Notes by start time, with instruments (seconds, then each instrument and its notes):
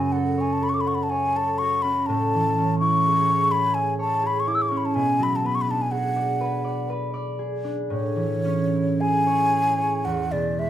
Already playing: harp F#2 C#3 C#4 F#4 G#4 C#5, flute G#5
0.12 harp A4, flute F#5
0.38 harp C#5, flute G#5
0.53 flute A5
0.62 harp A4, flute B5
0.69 flute C#6
0.74 flute D6
0.81 flute B5
0.86 harp F#5, flute C#6
0.95 flute B5
1.03 flute A5
1.10 harp C#5, flute G#5
1.35 harp A4, flute A5
1.58 harp F#4, flute C#6
1.82 harp C#4, flute B5
2.06 harp A2, flute A5
2.34 harp E3
2.58 harp C#4
2.79 harp E4, flute C#6
3.06 harp G#4
3.30 harp C#5
3.51 harp G#4, flute B5
3.74 harp E5, flute G#5
3.99 harp C#5, flute A5
4.23 harp G#4, flute B5
4.40 flute C#6
4.47 harp E4, flute D6
4.55 flute E6
4.62 flute D6
4.69 harp C#4, flute C#6
4.77 flute B5
4.85 flute A5
4.94 harp B2, flute G#5
5.19 harp F#3
5.23 flute B5
5.36 flute A5
5.44 harp B3, flute B5
5.55 flute C#6
5.61 flute B5
5.68 harp D4, flute A5
5.82 flute G#5
5.91 harp G#4, flute F#5
6.16 harp D5
6.41 harp B4
6.64 harp D5
6.90 harp B4
7.14 harp D5
7.39 harp G#4
7.64 harp D4
7.90 harp A2, flute C#5
8.16 harp E3
8.45 harp C#4
8.73 harp E4
9.01 harp G#4, flute G#5
9.27 harp C#5
9.54 harp G#4
9.78 harp C#5
10.05 harp E2, flute F#5
10.32 harp B2, flute D5
10.59 harp G#3, flute E5